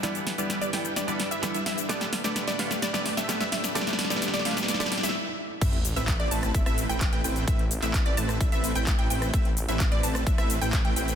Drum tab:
CC |--------------------------------|--------------------------------|--------------------------------|x-------------------------------|
HH |x-x-o-x-x-x-o-x-x-x-o-x-x-x-o-x-|x-x-o-x-x-x-o-x-x-x-o-x-x-x-o-x-|x-x-o-x-x-x-o-x-x-x-o-x---------|x-x-o-x-x-x-o-x-x-x-o-x-x-x-o-x-|
SH |x-x---x-x-x---x-x-x---x-x-x---x-|x-x---x-x-x---x-x-x---x-x-x---x-|x-x---x-x-x---x-x-x---x---------|x---x-x-x---x-x-x-x-x-x-x---x-x-|
CP |--------------------------------|--------------------------------|--------------------------------|--------x---------------x-------|
SD |o---o---o---o---o---o---o---o---|o-o-o-o-o-o-o-o-o-o-o-o-o-o-o-o-|oooooooooooooooooooooooo--------|--------------r---r-------------|
BD |--------------------------------|--------------------------------|--------------------------------|o-------o-------o-------o-------|

CC |--------------------------------|--------------------------------|
HH |x-x-o-x-x-x-o-x-x-x-o-x-x-x-o-x-|x-x-o-x-x-x-o-x-x-x-o-x-x-x-o-x-|
SH |x---x-x-x---x-x-x-x-x-x-x---x-x-|x---x-x-x---x-x-x-x-x-x-x---x-x-|
CP |------x-x---------------x-------|--------x---------------x-------|
SD |--------------r---------------r-|--------------r---r-------------|
BD |o-------o-------o-------o-------|o-------o-------o-------o-------|